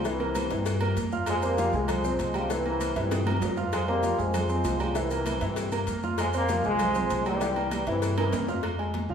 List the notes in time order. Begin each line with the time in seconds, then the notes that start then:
Already playing: C2
0.05 C3 E3 E4 E5, cowbell, high conga, maracas
0.20 A#3 A#4 A#5, high conga, low agogo
0.35 cowbell, high conga, low agogo, maracas
0.50 G2 A#2 C3 E3 E4 E5, cowbell, high conga, maracas
0.66 cowbell, low agogo, maracas
0.81 A#3 A#4 A#5, low agogo
0.96 F2, cowbell, high conga, maracas
1.12 F4 F5 F6, high conga, maracas
1.26 F3 G#3, cowbell, high conga, low agogo, maracas
1.42 G3 A#3 C4 C5 C6, high conga, low agogo, maracas
1.58 F3 F4 F5, cowbell, high conga, maracas
1.73 C2 F3 G#3 G#4 G#5, high conga, maracas
1.88 cowbell, high conga, low conga, low agogo, maracas
2.04 C4 C5 C6, high conga, maracas
2.19 C2, cowbell, high conga, low agogo, maracas
2.34 C#3 F3 G3 G4 G5, high conga, low agogo, maracas
2.50 C3 E3 E4 E5, cowbell, high conga, maracas
2.66 A#3 A#4 A#5, high conga, low agogo
2.81 cowbell, high conga, low agogo, maracas
2.95 G2 A#2 C3 E3 E4 E5, cowbell, high conga, maracas
3.11 cowbell, high timbale, low agogo, maracas
3.26 A#3 A#4 A#5, high conga, low timbale, low agogo
3.37 low conga
3.42 F2, cowbell, low timbale, maracas
3.57 F4 F5 F6, low conga, low timbale, maracas
3.73 F3 G#3, cowbell, high conga, low agogo, maracas
3.88 G3 A#3 C4 C5 C6, high conga, low agogo
4.03 F3 F4 F5, cowbell, high conga, maracas
4.18 F2 F3 G#3 G#4 G#5, high conga, maracas
4.34 cowbell, high conga, low conga, low agogo, maracas
4.49 C4 C5 C6, high conga, maracas
4.64 C2, cowbell, high conga, low timbale, low agogo, maracas
4.80 C#3 F3 G3 G4 G5, high conga, low agogo, maracas
4.95 C3 E3 E4 E5, cowbell, high conga, maracas
5.11 A#3 A#4 A#5, high conga, low agogo, maracas
5.26 cowbell, high conga, low agogo, maracas
5.41 G2 A#2 C3 E3 E4 E5, cowbell, high conga, maracas
5.56 cowbell, high conga, low agogo, maracas
5.72 A#3 A#4 A#5, low agogo, maracas
5.87 F2, cowbell, high conga, maracas
6.03 F4 F5 F6, high conga, maracas
6.18 F3 G#3, cowbell, high conga, low agogo, maracas
6.33 G3 A#3 C4 C5 C6, high conga, low agogo, maracas
6.49 F3 F4 F5, cowbell, high conga, maracas
6.64 C2 F3 G#3 G#4 G#5, high conga, maracas
6.79 cowbell, high conga, low conga, low agogo, maracas
6.95 C4 C5 C6, high conga, low conga, maracas
7.10 C2, cowbell, high conga, low agogo, maracas
7.26 E3 G3 G4 G5, high conga, low agogo, maracas
7.41 E3 E4 E5, cowbell, high conga, maracas
7.56 A#3 A#4 A#5, high conga, low agogo
7.71 E3 G3, cowbell, high conga, low agogo, maracas
7.87 G2 C3 E3 E4 E5, cowbell, high conga, maracas
8.02 cowbell, high conga, low agogo, maracas
8.18 C3 E3 A#3 A#4 A#5, high timbale, low agogo
8.33 F2, cowbell, high conga, high timbale, maracas
8.48 F4 F5 F6, high conga, low timbale, maracas
8.63 cowbell, high conga, low agogo
8.79 G#3 G#4 G#5, high conga, low agogo
8.94 cowbell, high conga
9.09 C2 F3 F4 F5, high conga